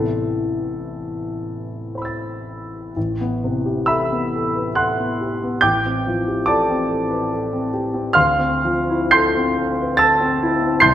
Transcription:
Already playing: A1 C3 B3 E4 A4
1.95 C5 B5
2.02 E6 A6
2.96 A1
3.20 B3
3.44 C3
3.66 G4
3.86 A4 E5 B5 E6
4.12 B3
4.35 A4
4.56 B4
4.75 A4 F#5 C6 F#6
4.99 B3
5.21 G4
5.43 B3
5.61 A1 G5 D6 G6
5.85 C4
6.07 F3
6.28 G4
6.46 A4 D5 A5 D6
6.70 C4
6.90 A4
7.10 B4
7.32 A4
7.53 C4
7.74 G4
7.94 C4
8.13 D2 F5 C6 F6
8.39 C4
8.65 F3
8.90 E4
9.11 A4 C6 G6 C7
9.35 C4
9.57 A4
9.81 B4
9.97 A4 A5 E6 A6
10.21 C4
10.43 E4
10.62 C4
10.80 C2 C6 G6 C7

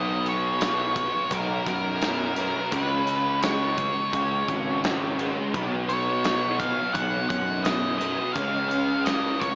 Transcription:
Already playing: B1 B2 F#3 B3 D#5
0.26 C#5, closed hi-hat
0.61 snare, closed hi-hat
0.96 kick, closed hi-hat
1.31 B1 A#4, kick, closed hi-hat
1.66 F#2 A#4, kick, closed hi-hat
2.02 snare, closed hi-hat
2.36 B2 F#3 B3, closed hi-hat
2.71 C#2 C#3 G#3 C#4 A#4, kick, closed hi-hat
2.84 B4
3.07 closed hi-hat
3.43 C#5, snare, closed hi-hat
3.78 kick, closed hi-hat
4.13 C#2, kick, closed hi-hat
4.48 G#1, kick, closed hi-hat
4.84 snare, closed hi-hat
5.18 C#3 G#3 C#4, closed hi-hat
5.53 B1 B2 F#3 B3, kick, closed hi-hat
5.89 C#5, closed hi-hat
6.24 snare, closed hi-hat
6.59 F5, kick, closed hi-hat
6.94 B1 F#5, kick, closed hi-hat
7.29 F#2 F#5, kick, closed hi-hat
7.64 D#5, snare, closed hi-hat
7.98 B2 F#3 B3 D#5, closed hi-hat
8.33 C#2 C#3 G#3 C#4 F5, kick, closed hi-hat
8.69 F5, closed hi-hat
9.05 D#5, snare, closed hi-hat
9.40 C#5, kick, closed hi-hat

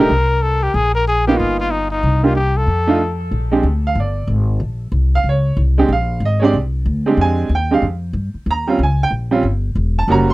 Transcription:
Already playing: A#4
0.09 C2
0.42 A4
0.63 G4
0.74 A#1 G#4
0.95 A#4
1.07 G#4
1.27 A#3 B3 D#4 F4 G4
1.38 G1 F4
1.60 F4
1.71 D#4
1.91 D#4
2.03 C2
2.23 A#3 D4 D#4 F4 G4
2.35 G4
2.57 A4
2.67 F2
2.87 A3 D4 D#4 F4
3.31 A#1
3.52 G#3 C4 D4 G4
3.63 D2
3.87 F5
3.95 G1
4.00 D5
4.27 G#1
4.60 A#1
4.92 C2
5.15 F5
5.24 C#2
5.29 C#5
5.57 C2
5.78 G#3 C4 D4 G4
5.88 A#1
5.93 F5
6.20 G#1
6.25 D#5
6.40 G#3 C4 D4 G4 C#5
6.44 D5
6.53 C2
6.86 D2
7.06 G#3 C4 D4 G4
7.17 F2
7.21 G#5
7.49 D#2
7.55 G5
7.71 G#3 C4 D4 G4 F5
7.82 F2
8.13 G2
8.34 muted upright bass stroke
8.46 D#2
8.51 A#5
8.67 G3 C4 C#4 F4
8.79 C#2
8.83 G#5
9.03 G5
9.11 A#1
9.31 G3 C4 C#4 F4
9.43 G1
9.75 E1
9.99 A5
10.08 F#1 G3 A#3 C#4 F#4 A#5
10.30 C6

